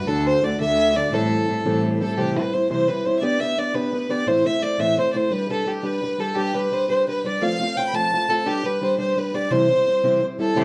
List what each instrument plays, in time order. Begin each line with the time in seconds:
0.07 cello D2, steel-string acoustic guitar D3 A3 D4 F#4 A4, fiddle A4
0.26 fiddle C5
0.43 cello D2, steel-string acoustic guitar A3 D4 F#4 A4, fiddle D5
0.60 cello D2, steel-string acoustic guitar D3 A3 D4 F#4 A4, fiddle E5
0.95 steel-string acoustic guitar A3 D4 F#4 A4, fiddle D5
1.12 steel-string acoustic guitar A2 E3 G3 C4 E4 A4, cello A2, fiddle A4
1.47 cello A2, steel-string acoustic guitar G3 C4 E4 A4
1.65 steel-string acoustic guitar A2 E3 G3 C4 E4 A4, cello A2
1.97 steel-string acoustic guitar G3 C4, fiddle B4
2.01 steel-string acoustic guitar E4 A4, fiddle A4
2.17 steel-string acoustic guitar C3 E3 G3 C4 E4 C5, fiddle G4
2.36 steel-string acoustic guitar G3 C4 E4 C5, fiddle B4
2.53 steel-string acoustic guitar G3 C4 E4 C5, fiddle C5
2.69 steel-string acoustic guitar C3 E3 G3 C4 E4 C5, fiddle C5
2.88 steel-string acoustic guitar G3 C4 E4 C5, fiddle B4
3.05 steel-string acoustic guitar G3 C4 E4 C5, fiddle C5
3.19 steel-string acoustic guitar B3 D4, fiddle D5 E5
3.23 steel-string acoustic guitar G4 B4, fiddle D5
3.40 steel-string acoustic guitar B3 D4 G4 B4, fiddle E5
3.58 steel-string acoustic guitar B3 D4 G4 B4, fiddle D5
3.74 steel-string acoustic guitar B3 D4 G4 B4, fiddle B4
3.93 steel-string acoustic guitar B3 D4 G4 B4
4.09 steel-string acoustic guitar B3 D4 G4 B4, fiddle D5
4.27 steel-string acoustic guitar A2 E3 A3 C4 E4 C5, fiddle C5
4.45 steel-string acoustic guitar A3 C4 E4 C5, fiddle E5
4.62 steel-string acoustic guitar A3 C4 E4 C5, fiddle D5
4.78 steel-string acoustic guitar A2 E3 A3 C4 E4 C5, fiddle E5
4.97 steel-string acoustic guitar A3 C4 E4 C5, fiddle C5
5.12 steel-string acoustic guitar A3 C4 E4, fiddle C5 D5
5.16 steel-string acoustic guitar C5, fiddle C5
5.31 steel-string acoustic guitar G3 D4 G4 B4, fiddle B4
5.49 steel-string acoustic guitar G3 D4 G4 B4, fiddle A4
5.66 steel-string acoustic guitar G3 D4 G4 B4, fiddle G4
5.83 steel-string acoustic guitar G3 D4 G4 B4, fiddle B4
6.02 steel-string acoustic guitar G3 D4 G4 B4
6.18 steel-string acoustic guitar G3 D4 G4 B4, fiddle A4
6.34 steel-string acoustic guitar G3 D4 G4 B4, fiddle G4 A4
6.55 steel-string acoustic guitar G3 D4 G4 B4, fiddle B4
6.72 steel-string acoustic guitar G3 D4 G4 B4, fiddle C5
6.88 steel-string acoustic guitar G3 D4 G4 B4, fiddle C5
7.07 steel-string acoustic guitar G3 D4 G4 B4, fiddle B4
7.24 steel-string acoustic guitar G3 D4 G4 B4, fiddle D5
7.41 steel-string acoustic guitar F3 A3 C4 F4 C5, fiddle F5
7.60 steel-string acoustic guitar A3 C4 F4 C5
7.77 steel-string acoustic guitar A3 C4 F4 C5, fiddle G5
7.87 fiddle B5
7.93 steel-string acoustic guitar F3 A3 C4 F4 C5, fiddle A5
8.12 steel-string acoustic guitar A3 C4 F4 C5
8.29 steel-string acoustic guitar A3 C4 F4 C5, fiddle A4
8.46 steel-string acoustic guitar G3 D4 G4 B4, fiddle G4
8.64 steel-string acoustic guitar G3 D4 G4 B4, fiddle B4
8.81 steel-string acoustic guitar G3 D4 G4 B4, fiddle C5
8.98 steel-string acoustic guitar G3 D4 G4 B4, fiddle C5
9.17 steel-string acoustic guitar G3 D4 G4 B4, fiddle B4
9.34 steel-string acoustic guitar G3 D4 G4 B4, fiddle D5
9.51 steel-string acoustic guitar C3 E3 G3 C4 E4 C5, fiddle C5
9.69 steel-string acoustic guitar G3 C4 E4 C5
9.86 steel-string acoustic guitar G3 C4 E4 C5
10.03 steel-string acoustic guitar C3 E3 G3 C4 E4 C5
10.22 steel-string acoustic guitar G3 C4 E4 C5
10.39 steel-string acoustic guitar G3 C4 E4 C5, fiddle A4
10.55 steel-string acoustic guitar C3 E3 G3 C4 E4 C5, cello C3, fiddle G4